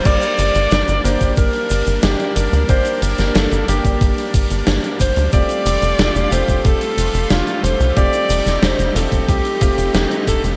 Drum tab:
CC |x---------------|----------------|----------------|----------------|
HH |xxxxxxxxxxxxxxxx|xxxxxxxxxxxxxxxx|xxxxxxxxxxxxxxxx|xxxxxxxxxxxxxxxx|
SH |xxxxxxxxx-xxx-xx|xxxxxxxxx-xxx-xx|xxxxxxxxx-xxx-xx|xxxxxxxxx-xxx-xx|
SD |----o-------o---|---oo-------o---|----o-------o---|---oo-------o---|
BD |o------oo-------|o------oo-o---o-|o------oo-------|o------oo-o---o-|